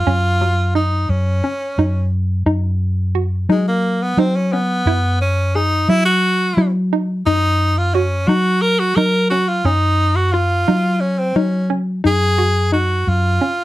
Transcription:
Already playing: F4
0.07 F#2 C#4
0.41 F#3
0.75 D#4
1.09 F#2 C#4
1.44 C#4
1.78 F#2 D#4
2.46 F#2 D#4
3.15 F#4
3.49 F#3 G#3 D#4
3.68 A#3
4.02 B3
4.17 F#3 C4 D#4
4.36 C#4
4.53 B3 C#4
4.86 F#2 E4
5.21 C#4
5.55 D#4 G#4
5.88 F#3 E4
6.06 F#4
6.57 F#3 E4
6.93 D#4
7.26 F#2 D#4
7.78 F4
7.94 C#4 F#4
8.28 F#3 D#4 F#4
8.62 A#4
8.80 F#4
8.96 F#3 D#4 A#4
9.30 C#4 F#4
9.48 F4
9.64 F#2 C#4 D#4
10.16 F#4
10.32 F4
10.68 F#3 D#4
11.01 C#4
11.19 C4
11.36 F#3 C#4 D#4
11.70 C#4
12.04 F#2 D#4 G#4
12.38 F#4
12.72 D#4 F#4
13.07 F#2 F4
13.41 C#4

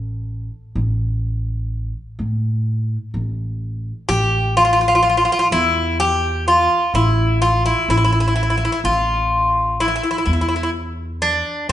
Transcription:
Already playing: A1 A4
0.75 A1
2.19 A2
3.14 A1
4.09 A1 G4
4.57 F4
4.65 F4
4.73 F4
4.81 F4
4.88 F4
4.95 F4
5.03 F4
5.10 F4
5.17 F4
5.25 F4
5.32 F4
5.39 F4
5.52 E2 E4
6.00 G4
6.48 F4
6.94 A1 E4
7.42 F4
7.66 E4
7.88 A1 E4
7.97 E4
8.04 E4
8.12 E4
8.20 E4
8.28 E4
8.36 E4
8.43 E4
8.50 E4
8.57 E4
8.65 E4
8.72 E4
8.84 A1 F4
9.80 E4
9.88 E4
9.96 E4
10.03 E4
10.11 E4
10.18 E4
10.26 E2 E4
10.33 E4
10.41 E4
10.49 E4
10.56 E4
10.63 E4
11.22 D4

